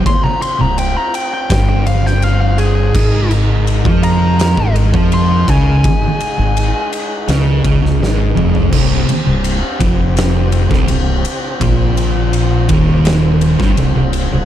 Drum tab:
CC |----------------|x---------------|----------------|x---------------|
RD |x-x-x-x-x-x-x-x-|--x-x-x-x-x-x-x-|x-x-x-x-x-x-----|--x-x-x-x-x-x-x-|
SD |--------o--o----|--------o-------|--------o--oo---|--------o--o----|
T2 |----------------|----------------|--------------o-|----------------|
FT |----------------|----------------|---------------o|----------------|
BD |o-------o-------|o----o---o-o--o-|o---------o-----|o-----o----o----|

CC |----------------|
RD |x-x-x-x-x-x-x-x-|
SD |--------o--o----|
T2 |----------------|
FT |----------------|
BD |o-----o----o----|